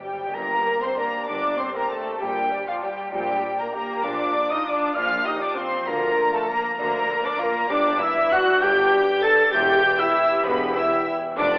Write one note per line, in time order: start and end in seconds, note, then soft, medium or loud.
0.00 0.27 G2 medium
0.00 0.10 G2 medium
0.00 0.33 G3 medium
0.00 0.50 D4 medium
0.00 0.57 G4 medium
0.00 0.32 G4 medium
0.00 2.18 A#4 medium
0.00 0.36 G5 medium
0.00 0.32 G5 medium
0.11 0.18 G2 medium
0.19 0.26 G2 medium
0.27 0.34 G2 loud
0.34 0.60 G1 medium
0.34 0.61 G1 medium
0.34 0.60 G2 medium
0.34 1.27 G2 medium
0.34 0.81 A#3 medium
0.34 0.82 A#3 loud
0.34 0.82 A#4 loud
0.34 0.82 A#5 loud
0.43 1.20 D3 medium
0.51 1.34 D4 medium
0.58 0.72 G4 medium
0.66 0.96 A#3 medium
0.66 1.05 D5 medium
0.74 1.13 G4 medium
0.82 0.98 C4 loud
0.82 0.98 C5 loud
0.82 0.97 G5 medium
0.82 0.88 C6 medium
0.82 0.98 C6 loud
0.90 1.81 D6 medium
0.97 1.28 A#3 loud
0.97 1.57 D4 medium
0.97 1.28 A#4 medium
0.97 1.74 G5 medium
0.97 1.27 A#5 medium
0.97 1.28 A#5 loud
1.06 1.58 D5 medium
1.14 1.50 G4 medium
1.21 1.42 D3 medium
1.28 1.54 G1 loud
1.28 1.54 G1 medium
1.28 2.22 G2 medium
1.28 1.54 G2 medium
1.28 1.59 D4 loud
1.28 1.59 D5 loud
1.28 1.58 D6 loud
1.28 1.59 D6 loud
1.35 2.35 D4 medium
1.43 2.12 D3 medium
1.51 1.65 G4 medium
1.58 1.74 C4 loud
1.58 1.75 C4 loud
1.58 2.20 C4 medium
1.58 1.75 C5 loud
1.58 1.97 D5 medium
1.58 1.75 C6 loud
1.58 1.78 C6 medium
1.66 2.05 G4 medium
1.75 1.91 A#3 medium
1.75 1.91 A#4 loud
1.75 1.89 G5 medium
1.75 1.91 A#5 loud
1.75 1.93 A#5 medium
1.82 2.73 D6 medium
1.91 2.21 A3 loud
1.91 2.21 A4 medium
1.91 2.65 G5 medium
1.91 2.21 A5 loud
1.91 2.23 A5 medium
1.98 2.50 D5 medium
2.06 2.42 G4 medium
2.13 2.22 D3 medium
2.21 2.47 A#1 medium
2.21 3.12 A#2 medium
2.21 2.47 A#2 medium
2.21 2.66 G3 medium
2.21 2.67 G3 medium
2.21 2.53 A#3 medium
2.21 2.68 G4 medium
2.21 2.70 G5 loud
2.21 2.67 G5 loud
2.28 3.04 A#3 medium
2.36 3.19 D4 medium
2.43 2.58 G4 medium
2.51 3.11 D4 medium
2.51 2.89 D5 medium
2.59 2.97 G4 medium
2.66 2.83 F3 medium
2.66 2.84 F3 medium
2.66 2.83 F4 medium
2.66 2.74 F5 loud
2.66 2.85 F5 medium
2.66 2.81 G5 medium
2.74 3.66 D6 medium
2.82 3.12 G3 loud
2.82 3.12 G3 medium
2.82 3.13 G4 medium
2.82 3.58 G5 medium
2.82 3.12 G5 medium
2.82 3.13 G5 medium
2.91 3.42 D5 medium
2.98 3.35 G4 medium
3.05 3.27 A#3 medium
3.12 3.38 A#1 medium
3.12 3.39 A#1 medium
3.12 4.04 A#2 medium
3.12 3.39 A#2 loud
3.12 3.58 G3 medium
3.12 3.59 G3 medium
3.12 3.76 D4 loud
3.12 3.59 G4 loud
3.12 3.38 G5 loud
3.12 3.59 G5 loud
3.20 4.17 D4 medium
3.28 3.97 A#3 medium
3.36 3.51 G4 medium
3.44 3.82 D5 medium
3.52 3.89 G4 medium
3.59 3.76 A#3 medium
3.59 3.67 A#3 medium
3.59 3.72 A#4 medium
3.59 3.74 G5 medium
3.59 3.75 A#5 medium
3.59 3.73 A#5 loud
3.67 7.57 D6 medium
3.73 4.05 A#3 loud
3.73 4.04 G4 loud
3.73 4.03 A#4 loud
3.73 4.06 G5 medium
3.73 4.04 A#5 loud
3.73 4.06 A#5 medium
3.83 4.42 D5 medium
3.90 4.06 G4 medium
3.99 5.94 A#3 medium
4.03 4.29 A#1 medium
4.03 4.30 A#1 medium
4.03 4.30 A#2 loud
4.03 4.96 A#2 medium
4.03 4.51 D4 medium
4.03 4.51 D4 loud
4.03 4.95 F4 medium
4.03 4.52 D5 loud
4.03 4.52 D6 loud
4.03 4.51 D6 loud
4.12 4.89 F3 medium
4.19 5.02 D4 medium
4.27 4.82 F4 medium
4.35 4.74 A#4 medium
4.43 5.33 D5 medium
4.50 4.67 D#4 medium
4.50 4.68 D#4 loud
4.50 4.67 D#5 loud
4.50 4.66 F5 medium
4.50 4.67 D#6 loud
4.60 5.49 A#5 medium
4.66 4.96 D4 loud
4.66 4.97 D5 loud
4.66 5.40 F5 medium
4.66 4.96 D6 loud
4.66 4.97 D6 loud
4.75 5.25 A#4 medium
4.83 5.18 F4 medium
4.90 5.09 F3 medium
4.95 5.21 A#1 loud
4.95 5.21 A#1 medium
4.95 5.21 A#2 loud
4.95 5.89 A#2 loud
4.95 5.27 D4 loud
4.95 5.26 F4 loud
4.95 5.26 F5 loud
4.95 5.26 F6 loud
4.95 5.27 F6 loud
5.03 6.01 D4 medium
5.10 5.79 F3 medium
5.19 5.72 F4 medium
5.26 5.42 D#4 loud
5.26 5.42 D#4 medium
5.26 5.60 G4 loud
5.26 5.64 A#4 medium
5.26 5.42 D#5 loud
5.26 5.42 D#6 loud
5.26 5.40 D#6 loud
5.34 6.24 D5 medium
5.41 5.57 D4 loud
5.41 5.58 D4 loud
5.41 5.48 D5 loud
5.41 5.57 F5 medium
5.41 5.57 D6 loud
5.41 5.58 D6 loud
5.51 6.40 A#5 medium
5.55 5.86 C4 loud
5.55 5.88 C4 loud
5.55 5.87 F4 medium
5.55 5.87 C5 loud
5.55 6.32 F5 medium
5.55 5.88 C6 loud
5.55 5.89 C6 loud
5.66 6.16 A#4 medium
5.73 6.08 F4 medium
5.80 7.71 F3 medium
5.87 6.13 D2 medium
5.87 6.13 D2 loud
5.87 6.77 D3 loud
5.87 6.13 D3 medium
5.87 6.34 A#3 loud
5.87 6.52 F4 loud
5.87 6.34 A#4 loud
5.87 6.35 A#5 loud
5.87 6.34 A#5 loud
5.95 6.71 A#3 medium
6.02 6.85 D4 medium
6.09 6.62 F4 medium
6.25 7.16 D5 medium
6.32 6.49 A3 loud
6.32 6.41 A3 medium
6.32 6.50 A4 loud
6.32 6.47 F5 medium
6.32 6.50 A5 loud
6.48 6.77 A#3 loud
6.48 6.78 A#3 loud
6.48 6.77 A#4 loud
6.48 7.23 F5 medium
6.48 6.77 A#5 loud
6.48 6.79 A#5 medium
6.56 7.08 A#4 medium
6.63 7.00 F4 medium
6.72 6.92 A#3 medium
6.78 7.04 D2 medium
6.78 7.04 D2 loud
6.78 7.71 D3 loud
6.78 7.04 D3 loud
6.78 7.24 A#3 loud
6.78 7.40 D4 medium
6.78 7.24 A#4 loud
6.78 7.24 A#5 loud
6.78 7.27 A#5 loud
6.86 7.92 D4 medium
6.93 7.62 A#3 medium
7.01 7.54 F4 medium
7.09 7.47 A#4 medium
7.17 8.16 D5 medium
7.24 7.40 D4 loud
7.24 7.41 D4 loud
7.24 7.41 D5 loud
7.24 7.40 F5 loud
7.24 7.40 D6 loud
7.33 7.72 A#5 medium
7.38 7.69 A#3 loud
7.38 7.70 A#3 loud
7.38 7.68 F4 loud
7.38 7.70 A#4 loud
7.38 7.72 F5 medium
7.38 7.70 A#5 loud
7.55 7.71 F4 medium
7.63 7.71 A#3 medium
7.69 7.95 G1 medium
7.69 7.96 G1 loud
7.69 7.96 G2 loud
7.69 8.61 G2 loud
7.69 8.00 D4 loud
7.69 8.02 G4 loud
7.69 8.01 D5 loud
7.69 8.00 D6 loud
7.78 8.54 D3 medium
7.86 8.68 B3 medium
7.93 8.08 D4 medium
8.00 8.35 E4 loud
8.00 8.32 E4 loud
8.00 8.39 B4 medium
8.00 8.32 E5 loud
8.00 8.32 E6 loud
8.00 8.33 E6 loud
8.09 8.46 D4 medium
8.17 8.31 D5 loud
8.24 9.16 B5 medium
8.32 9.23 D4 loud
8.32 8.62 F#4 loud
8.32 9.08 D5 medium
8.32 8.62 F#5 loud
8.32 8.62 F#6 loud
8.32 8.63 F#6 loud
8.40 8.92 B4 medium
8.47 8.83 D4 medium
8.55 8.76 D3 medium
8.61 8.87 G1 loud
8.61 8.87 G2 loud
8.61 9.55 G2 loud
8.61 9.23 G4 loud
8.61 9.24 G5 loud
8.61 9.02 G6 loud
8.61 9.23 G6 loud
8.69 9.68 B3 medium
8.77 9.46 D3 medium
8.85 9.00 D4 medium
8.93 9.32 B4 medium
9.01 9.39 D4 medium
9.09 9.24 D5 loud
9.17 10.06 B5 medium
9.23 9.53 D4 loud
9.23 9.53 A4 loud
9.23 9.55 D5 medium
9.23 9.53 A5 loud
9.23 9.53 A6 loud
9.23 9.52 A6 loud
9.33 9.82 B4 medium
9.40 9.55 D4 medium
9.47 9.55 D3 medium
9.53 9.79 E1 loud
9.53 9.78 E2 loud
9.53 10.44 E2 loud
9.53 9.85 E4 loud
9.53 9.99 G4 loud
9.53 9.87 G4 loud
9.53 9.99 G5 loud
9.53 10.01 G6 loud
9.53 10.00 G6 loud
9.61 10.37 B2 medium
9.69 10.51 B3 medium
9.76 9.91 G4 medium
9.83 10.14 G4 loud
9.83 10.22 B4 medium
9.92 10.30 G4 medium
9.99 10.46 E4 loud
9.99 10.45 E4 loud
9.99 10.46 E5 loud
9.99 10.14 G5 loud
9.99 10.45 E6 loud
10.07 10.99 B5 medium
10.15 11.08 G4 loud
10.15 10.91 G5 medium
10.31 10.66 G4 medium
10.38 10.59 B2 medium
10.45 10.70 E1 loud
10.45 10.71 E1 loud
10.45 11.39 E2 loud
10.45 10.71 E2 loud
10.45 10.76 B3 loud
10.45 10.76 B4 loud
10.45 10.75 B5 loud
10.53 11.52 B3 medium
10.60 11.30 B2 medium
10.68 10.83 G4 medium
10.75 11.08 E4 loud
10.75 11.15 B4 loud
10.75 11.08 E5 loud
10.75 11.07 E6 loud
10.75 11.08 E6 loud
10.84 11.22 G4 medium
10.92 11.06 G5 medium
11.00 11.59 B5 medium
11.07 11.37 E4 loud
11.07 11.39 G5 medium
11.16 11.59 B4 medium
11.23 11.39 G4 medium
11.31 11.39 B2 medium
11.37 11.59 F1 loud
11.37 11.59 F2 loud
11.37 11.59 D4 loud
11.37 11.59 D5 loud
11.37 11.59 D6 loud
11.45 11.59 F3 medium
11.53 11.59 B3 medium